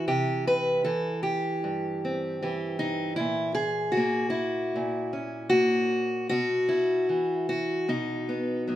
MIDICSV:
0, 0, Header, 1, 2, 480
1, 0, Start_track
1, 0, Tempo, 778210
1, 48, Time_signature, 4, 2, 24, 8
1, 3408, Tempo, 793651
1, 5363, End_track
2, 0, Start_track
2, 0, Title_t, "Steel-string acoustic guitar"
2, 0, Program_c, 0, 25
2, 0, Note_on_c, 0, 52, 68
2, 0, Note_on_c, 0, 64, 48
2, 47, Note_on_c, 0, 48, 77
2, 48, Note_on_c, 0, 67, 99
2, 288, Note_off_c, 0, 67, 0
2, 292, Note_on_c, 0, 71, 102
2, 518, Note_off_c, 0, 71, 0
2, 521, Note_on_c, 0, 69, 90
2, 522, Note_off_c, 0, 52, 0
2, 524, Note_on_c, 0, 52, 66
2, 528, Note_off_c, 0, 48, 0
2, 755, Note_off_c, 0, 69, 0
2, 757, Note_on_c, 0, 67, 83
2, 1010, Note_on_c, 0, 43, 66
2, 1263, Note_on_c, 0, 60, 50
2, 1483, Note_off_c, 0, 67, 0
2, 1493, Note_off_c, 0, 52, 0
2, 1495, Note_on_c, 0, 52, 65
2, 1498, Note_on_c, 0, 67, 47
2, 1718, Note_off_c, 0, 64, 0
2, 1721, Note_on_c, 0, 63, 91
2, 1938, Note_off_c, 0, 43, 0
2, 1942, Note_off_c, 0, 67, 0
2, 1944, Note_off_c, 0, 60, 0
2, 1947, Note_off_c, 0, 63, 0
2, 1949, Note_on_c, 0, 64, 96
2, 1971, Note_on_c, 0, 46, 71
2, 2185, Note_off_c, 0, 64, 0
2, 2187, Note_on_c, 0, 68, 101
2, 2416, Note_on_c, 0, 66, 95
2, 2446, Note_off_c, 0, 52, 0
2, 2449, Note_on_c, 0, 58, 67
2, 2649, Note_off_c, 0, 68, 0
2, 2651, Note_on_c, 0, 64, 84
2, 2927, Note_off_c, 0, 46, 0
2, 2934, Note_on_c, 0, 46, 72
2, 3152, Note_off_c, 0, 66, 0
2, 3164, Note_on_c, 0, 61, 46
2, 3389, Note_on_c, 0, 66, 116
2, 3397, Note_off_c, 0, 58, 0
2, 3404, Note_on_c, 0, 58, 66
2, 3628, Note_off_c, 0, 64, 0
2, 3852, Note_off_c, 0, 58, 0
2, 3852, Note_off_c, 0, 61, 0
2, 3858, Note_off_c, 0, 46, 0
2, 3866, Note_off_c, 0, 66, 0
2, 3873, Note_on_c, 0, 66, 117
2, 3879, Note_on_c, 0, 47, 71
2, 4110, Note_on_c, 0, 64, 78
2, 4355, Note_on_c, 0, 52, 58
2, 4359, Note_off_c, 0, 47, 0
2, 4589, Note_off_c, 0, 66, 0
2, 4596, Note_on_c, 0, 66, 102
2, 4834, Note_on_c, 0, 47, 67
2, 4835, Note_off_c, 0, 64, 0
2, 4837, Note_on_c, 0, 63, 78
2, 4838, Note_off_c, 0, 52, 0
2, 4838, Note_off_c, 0, 66, 0
2, 5078, Note_on_c, 0, 59, 46
2, 5312, Note_off_c, 0, 59, 0
2, 5313, Note_on_c, 0, 54, 61
2, 5319, Note_on_c, 0, 59, 51
2, 5363, Note_off_c, 0, 47, 0
2, 5363, Note_off_c, 0, 54, 0
2, 5363, Note_off_c, 0, 59, 0
2, 5363, Note_off_c, 0, 63, 0
2, 5363, End_track
0, 0, End_of_file